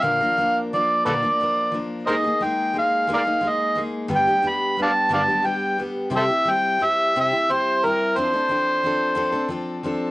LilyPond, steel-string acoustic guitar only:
\new Staff \with { instrumentName = "Steel-string acoustic guitar" } { \time 6/8 \key c \mixolydian \tempo 4. = 59 <bes, d f bes d' bes'>16 <f bes d' bes'>16 <f bes d' bes'>8 <f bes d' bes'>8 <bes, d f bes d' bes'>16 <f bes d' bes'>16 <f bes d' bes'>8 <f bes d' bes'>8 | <aes bes ees' aes'>16 <bes ees' aes'>16 <aes bes ees' aes'>8 <aes bes ees' aes'>8 <aes bes ees' aes'>16 <bes ees' aes'>16 <aes bes ees' aes'>8 <aes bes ees' aes'>8 | <g, d g b d' g'>16 <g b d' g'>16 <g b d' g'>8 <g b d' g'>8 <g, d g b d' g'>16 <g b d' g'>16 <g b d' g'>8 <g b d' g'>8 | <c g c' e' g'>16 <c' e' g'>16 <g c' e' g'>8 <g c' e' g'>8 <c g c' e' g'>16 <c' e' g'>16 <g c' e' g'>8 <g c' e' g'>8 |
<f c' d' a'>16 <c' d' a'>16 <f c' d' a'>8 <f c' d' a'>8 <f c' d' a'>16 <c' d' a'>16 <f c' d' a'>8 <f c' d' a'>8 | }